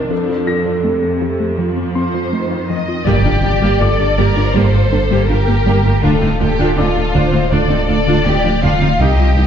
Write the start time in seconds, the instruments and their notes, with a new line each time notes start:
Already playing: viola section D4, soft synth lead A#4
0.10 cello section F2, synth arpeggio sound F3, viola section F3, soft synth lead A4
0.29 synth arpeggio sound F4
0.47 synth arpeggio sound F4, grand piano A#6
0.66 synth arpeggio sound F3
0.84 viola section C3, synth arpeggio sound A3
1.03 synth arpeggio sound C4
1.21 synth arpeggio sound F3
1.40 synth arpeggio sound A3
1.58 viola section F3, synth arpeggio sound F3
1.77 synth arpeggio sound C4
1.95 synth arpeggio sound C4, violin section C5, grand piano C6
2.14 synth arpeggio sound F3
2.33 viola section D#3, synth arpeggio sound A3
2.52 synth arpeggio sound F4
2.70 synth arpeggio sound F3, violin section D#5
2.88 synth arpeggio sound F4
3.06 double bass section G1, sub bass G1, cello section G2, synth arpeggio sound G3, viola section A#3 G4, violin section G4 D5, impact
3.24 cello section G2, viola section A3 F4, synth arpeggio sound D4
3.43 double bass section G1, cello section G2, viola section A#3 G4, synth arpeggio sound D4, violin section D5
3.61 cello section G2, synth arpeggio sound G3, viola section A#3 G4
3.80 double bass section G1, cello section G2, viola section A3 F4, synth arpeggio sound G4, violin section A4, grand piano D5 D6
3.99 cello section G2, viola section A#3 G4, synth arpeggio sound D4
4.17 double bass section G1, cello section G2, synth arpeggio sound G3, viola section A#3 G4, violin section A#4
4.35 cello section G2, viola section A3 F4, synth arpeggio sound D4
4.54 double bass section G1, cello section G2, synth arpeggio sound G3, viola section A#3 G4, violin section A4 C5
4.73 cello section G2, viola section A3 F4, synth arpeggio sound G4
4.91 double bass section G1, cello section G2, viola section A#3 G4, synth arpeggio sound D4
5.10 cello section G2, synth arpeggio sound G3, viola section A#3 G4
5.29 double bass section G1, cello section G2, viola section A3 F4, synth arpeggio sound D4, violin section G4 A#4
5.47 cello section G2, viola section A#3 G4, synth arpeggio sound A#3
5.66 double bass section G1, cello section G2, synth arpeggio sound G3, viola section A#3 G4
5.84 cello section G2, viola section A3 F4, synth arpeggio sound A#3
6.02 sub bass D1, cello section D2, double bass section D2, synth arpeggio sound D3, viola section D4 F4, violin section F4 A4
6.21 cello section D2, synth arpeggio sound A3, viola section C4 D#4
6.40 cello section D2, double bass section D2, synth arpeggio sound A3, viola section D4 F4, violin section G4
6.58 cello section D2, synth arpeggio sound D3, viola section D4 F4
6.76 cello section D2, double bass section D2, viola section C4 D#4, synth arpeggio sound D4, violin section F4, grand piano D5 D6
6.95 cello section D2, synth arpeggio sound A3, viola section D4 F4
7.14 cello section D2, double bass section D2, synth arpeggio sound D3, viola section D4 F4, violin section C5
7.32 cello section D2, synth arpeggio sound A3, viola section C4 D#4
7.51 cello section D2, double bass section D2, synth arpeggio sound D3, viola section D4 F4, violin section A4 D5
7.70 cello section D2, viola section C4 D#4, synth arpeggio sound D4
7.88 double bass section D2, cello section D2, synth arpeggio sound A3, viola section D4 F4, violin section D5
8.06 cello section D2, synth arpeggio sound D3, viola section D4 F4
8.25 double bass section D2, cello section D2, synth arpeggio sound A3, viola section C4 D#4, violin section G4
8.44 cello section D2, synth arpeggio sound F3, viola section D4 F4
8.62 cello section D2, double bass section D2, synth arpeggio sound D3, viola section D4 F4, violin section F4 F5
8.80 cello section D2, synth arpeggio sound F3, viola section C4 D#4
8.99 cello section C2, sub bass C2, double bass section C2, synth arpeggio sound C3, viola section D#4 G4, violin section G4 D#5
9.18 cello section C2, synth arpeggio sound G3, viola section C4 F4
9.37 cello section C2, double bass section C2, synth arpeggio sound G3, viola section D#4 G4, violin section D#5